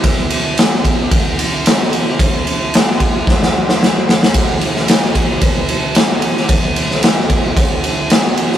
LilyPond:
\new DrumStaff \with { instrumentName = "Drums" } \drummode { \time 4/4 \tempo 4 = 112 <bd cymr>8 cymr8 <cymr sn>8 <bd cymr>8 <bd cymr>8 cymr8 <cymr sn>8 cymr8 | <bd cymr>8 cymr8 <cymr sn>8 <bd cymr>8 <bd sn>16 sn8 sn16 sn8 sn16 sn16 | <bd cymr>8 cymr16 sn16 <cymr sn>8 <bd cymr>8 <bd cymr>8 cymr8 <cymr sn>8 cymr16 sn16 | <bd cymr>8 cymr16 sn16 <cymr sn>8 <bd cymr>8 <bd cymr>8 cymr8 <cymr sn>8 cymr16 sn16 | }